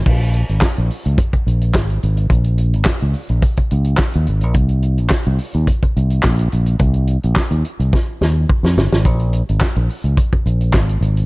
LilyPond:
<<
  \new Staff \with { instrumentName = "Fingered electric bass" } { \clef bass \time 4/4 \key bes \dorian \tempo 4 = 107 bes,,8. aes,,16 r16 bes,,16 r16 des,16 r8 bes,,8 aes,,8 aes,,8 | bes,,8. aes,,16 r16 des,16 r16 bes,,16 r8 des,8 r16 ees,16 aes,,16 bes,,16 | c,8. bes,,16 r16 c,16 r16 ees,16 r8 c,8 bes,,8 bes,,8 | c,8. bes,,16 r16 ees,16 r16 c,16 r8 ees,8 r16 f,16 g,,16 aes,,16 |
bes,,8. aes,,16 r16 bes,,16 r16 des,16 r8 bes,,8 aes,,8 aes,,8 | }
  \new DrumStaff \with { instrumentName = "Drums" } \drummode { \time 4/4 <cymc bd>16 hh16 hh16 hh16 <hc bd sn>16 hh16 hho16 hh16 <hh bd>16 <hh bd>16 hh16 hh16 <hc bd sn>16 hh16 hh16 hh16 | <hh bd>16 hh16 hh16 hh16 <hc bd sn>16 hh16 hho16 hh16 <hh bd>16 <hh bd>16 hh16 hh16 <hc bd sn>16 hh16 hh16 hh16 | <hh bd>16 hh16 hh16 hh16 <hc bd sn>16 hh16 hho16 hh16 <hh bd>16 <hh bd>16 hh16 hh16 <hc bd sn>16 hh16 hh16 hh16 | <hh bd>16 hh16 hh16 hh16 <hc bd sn>16 hh16 hh16 hh16 <bd sn>8 sn8 bd16 sn16 sn16 sn16 |
<hh bd>16 hh16 hh16 hh16 <hc bd sn>16 hh16 hho16 hh16 <hh bd>16 <hh bd>16 hh16 hh16 <hc bd sn>16 hh16 hh16 hh16 | }
>>